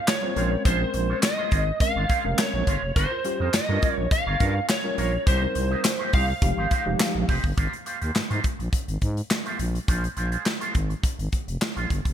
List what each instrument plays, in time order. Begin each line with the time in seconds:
0.07 tine electric piano F4 A#4, lead electric guitar C#5, muted clean electric guitar stroke, snare, clap, closed hi-hat
0.22 tine electric piano G3 C4 F4 C5, muted clean electric guitar stroke
0.36 fm bass A#1, tine electric piano G#3 C4 C#4 A#4, clean electric guitar G#3 C#4 F4 C5, closed hi-hat
0.51 muted clean electric guitar stroke
0.65 fm bass A#1, clean electric guitar G#3 C#4 F4 C5, lead electric guitar C5, kick, closed hi-hat
0.80 tine electric piano G#3 C4 C#4 A#4, muted clean electric guitar stroke
0.94 fm bass A#1, muted clean electric guitar stroke, closed hi-hat
1.09 clean electric guitar G#3 C#4 F4 C#5
1.22 lead electric guitar D#5, muted clean electric guitar stroke, snare, clap, closed hi-hat
1.38 clean electric guitar G#3 C#4 F4 C5
1.51 fm bass G#1, clean electric guitar G#3 C#4 F4 C5, kick, closed hi-hat
1.68 muted clean electric guitar stroke
1.80 tine electric piano G#3 C4 C#4 A#4, lead electric guitar F5, muted clean electric guitar stroke, kick, closed hi-hat
1.96 fm bass G#1, clean electric guitar G#3 C#4 F4 C5
2.09 clean electric guitar G#3 C#4 F4 C5, kick, closed hi-hat
2.24 fm bass F1, tine electric piano G#3 C4 C#4 A#4, muted clean electric guitar stroke
2.38 lead electric guitar C#5, muted clean electric guitar stroke, snare, clap, closed hi-hat
2.53 fm bass A#1, muted clean electric guitar stroke
2.67 fm bass G1, clean electric guitar G#3 C#4 F4 C5, kick, closed hi-hat
2.83 fm bass F1, muted clean electric guitar stroke
2.96 fm bass G1, clean electric guitar C#4 F4 A#4 C#5, lead electric guitar C5, kick, closed hi-hat
3.11 tine electric piano F4 A#4, muted clean electric guitar stroke
3.24 tine electric piano G3 C#4 F4 G4, muted clean electric guitar stroke, closed hi-hat
3.40 fm bass F2, clean electric guitar C#4 F4 A#4 D#5
3.53 fm bass G2, lead electric guitar D#5, muted clean electric guitar stroke, snare, clap, closed hi-hat
3.68 fm bass G2, tine electric piano G3 C#4 F4 A#4, clean electric guitar C#4 F4 A#4 C#5
3.82 clean electric guitar C#4 F4 A#4 C#5, kick, closed hi-hat
3.96 fm bass A#1, lead electric guitar C#5, muted clean electric guitar stroke
4.11 lead electric guitar F5, muted clean electric guitar stroke, kick, closed hi-hat
4.26 fm bass G1, clean electric guitar C#4 F4 A#4 C#5
4.40 fm bass G2, tine electric piano G3 C#4 F4 A#4, clean electric guitar C#4 F4 A#4 C#5, kick, closed hi-hat
4.55 muted clean electric guitar stroke
4.68 tine electric piano F4 A#4, lead electric guitar C#5, muted clean electric guitar stroke, snare, clap, closed hi-hat
4.84 tine electric piano G3 C#4 F4 A#4, muted clean electric guitar stroke
4.97 fm bass A#1, clean electric guitar C#4 F4 A#4 C#5, closed hi-hat
5.13 muted clean electric guitar stroke
5.26 fm bass C2, clean electric guitar A#3 D#4 G4 C5, lead electric guitar C5, kick, closed hi-hat
5.42 tine electric piano G3 C4 D#4 A#4, muted clean electric guitar stroke
5.55 fm bass C2, muted clean electric guitar stroke, closed hi-hat
5.71 clean electric guitar A#3 D#4 G4 D#5
5.84 snare, clap, closed hi-hat
5.99 clean electric guitar A#3 D#4 G4 C5
6.13 fm bass C2, clean electric guitar A#3 D#4 G4 C5, lead electric guitar F5, kick, open hi-hat
6.42 fm bass F1, tine electric piano F3 G#3 D#4 G4, muted clean electric guitar stroke, kick, closed hi-hat
6.57 fm bass G#1, clean electric guitar G#3 D#4 G4 C5
6.71 clean electric guitar G#3 D#4 G4 C5, kick, closed hi-hat
6.86 fm bass F1, tine electric piano F3 G#3 D#4 G4, muted clean electric guitar stroke
7.00 muted clean electric guitar stroke, snare, clap, closed hi-hat
7.15 fm bass A#1, muted clean electric guitar stroke
7.28 fm bass F1, clean electric guitar G#3 D#4 G4 C5, kick, open hi-hat
7.44 fm bass G1, muted clean electric guitar stroke, kick
7.57 fm bass G#1, clean electric guitar A#3 F4 G4 C5, kick, closed hi-hat
7.73 closed hi-hat
7.86 clean electric guitar A#3 F4 G4 C5, closed hi-hat
8.01 fm bass D#2, clean electric guitar A#3 F4 G4 C5, closed hi-hat
8.15 fm bass G#2, muted clean electric guitar stroke, snare, clap
8.30 fm bass G#2, clean electric guitar A#3 F4 G4 C5, closed hi-hat
8.44 muted clean electric guitar stroke, kick, closed hi-hat
8.59 fm bass A#1, muted clean electric guitar stroke, closed hi-hat
8.73 muted clean electric guitar stroke, kick, closed hi-hat
8.88 fm bass G#1, muted clean electric guitar stroke, closed hi-hat
9.01 fm bass G#2, kick, closed hi-hat
9.17 muted clean electric guitar stroke, closed hi-hat
9.30 muted clean electric guitar stroke, snare, clap
9.46 clean electric guitar A#3 F4 G4 C5, closed hi-hat
9.59 fm bass A#1, muted clean electric guitar stroke, closed hi-hat
9.74 muted clean electric guitar stroke, closed hi-hat
9.88 fm bass A#1, clean electric guitar G#3 C#4 F4 C5, kick, closed hi-hat
10.04 closed hi-hat
10.17 fm bass A#1, clean electric guitar G#3 C#4 F4 C5, closed hi-hat
10.32 clean electric guitar G#3 C#4 F4 C5, closed hi-hat
10.45 muted clean electric guitar stroke, snare, clap
10.61 clean electric guitar G#3 C#4 F4 C5, closed hi-hat
10.74 fm bass G#1, muted clean electric guitar stroke, kick, closed hi-hat
10.90 muted clean electric guitar stroke, closed hi-hat
11.03 muted clean electric guitar stroke, kick, closed hi-hat
11.18 fm bass G#1, muted clean electric guitar stroke, closed hi-hat
11.32 kick, closed hi-hat
11.47 fm bass F1, muted clean electric guitar stroke, closed hi-hat
11.62 snare, clap
11.76 fm bass A#1, clean electric guitar G#3 C#4 F4 C5, closed hi-hat
11.90 fm bass G1, muted clean electric guitar stroke, kick, closed hi-hat
12.05 fm bass F1, muted clean electric guitar stroke, kick, closed hi-hat